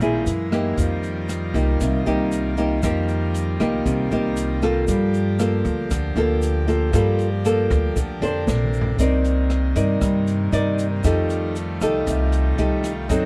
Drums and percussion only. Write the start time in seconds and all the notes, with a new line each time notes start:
0.01 closed hi-hat, shaker
0.26 closed hi-hat, shaker
0.52 cross-stick, closed hi-hat, shaker
0.78 kick, closed hi-hat, shaker
1.03 closed hi-hat, shaker
1.29 cross-stick, closed hi-hat, shaker
1.55 closed hi-hat, shaker
1.80 kick, cross-stick, closed hi-hat, shaker
2.06 closed hi-hat, shaker
2.32 closed hi-hat, shaker
2.57 closed hi-hat, shaker
2.83 kick, cross-stick, closed hi-hat, shaker
3.09 closed hi-hat, shaker
3.34 closed hi-hat, shaker
3.60 cross-stick, closed hi-hat, shaker
3.86 kick, closed hi-hat, shaker
4.11 closed hi-hat, shaker
4.37 closed hi-hat, shaker
4.62 cross-stick, closed hi-hat, shaker
4.88 kick, closed hi-hat, shaker
5.14 closed hi-hat, shaker
5.39 cross-stick, closed hi-hat, shaker
5.65 closed hi-hat, shaker
5.91 kick, cross-stick, closed hi-hat, shaker
6.16 closed hi-hat, shaker
6.42 closed hi-hat, shaker
6.68 closed hi-hat, shaker
6.93 kick, cross-stick, closed hi-hat, shaker
7.19 closed hi-hat, shaker
7.45 closed hi-hat, shaker
7.70 kick, cross-stick, closed hi-hat, shaker
7.96 kick, closed hi-hat, shaker
8.22 closed hi-hat, shaker
8.48 snare, shaker
8.64 mid tom
8.74 shaker
8.81 floor tom
8.99 kick, closed hi-hat, shaker
9.24 closed hi-hat, shaker
9.50 cross-stick, closed hi-hat
9.76 closed hi-hat, shaker
10.01 kick, cross-stick, closed hi-hat, shaker
10.27 closed hi-hat, shaker
10.53 closed hi-hat, shaker
10.79 closed hi-hat, shaker
11.04 kick, cross-stick, closed hi-hat, shaker
11.30 closed hi-hat, shaker
11.56 closed hi-hat, shaker
11.81 cross-stick, closed hi-hat, shaker
12.07 kick, closed hi-hat, shaker
12.32 closed hi-hat, shaker
12.58 closed hi-hat
12.84 cross-stick, closed hi-hat, shaker
13.09 kick, closed hi-hat, shaker